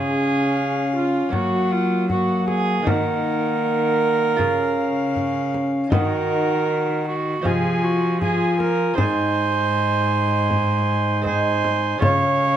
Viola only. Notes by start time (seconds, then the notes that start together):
Already playing: G#4
0.95 F4
1.33 F#4
1.72 F4
2.10 F#4
2.48 G#4
2.87 A#4
5.92 A#4
7.08 F#4
7.46 G#4
7.83 F#4
8.22 G#4
8.60 A#4
8.97 C5
11.26 C5
12.02 C#5